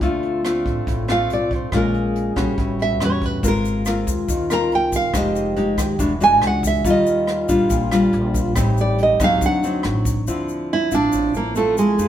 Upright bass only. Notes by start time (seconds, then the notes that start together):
0.01 D2
0.66 A1
0.87 A1
1.30 B1
1.73 A#1
2.37 A#1
2.58 A1
3.01 E2
3.43 G#1
4.07 D#2
4.29 D#2
4.72 C2
5.14 F1
5.78 D#2
5.99 E1
6.42 C#2
6.85 D#2
7.49 A#1
7.70 A#1
8.14 A#1
8.56 A1
9.20 C#2
9.41 D2
9.85 A1
10.27 D2
10.91 A1
11.13 A1
11.34 A1
11.98 F2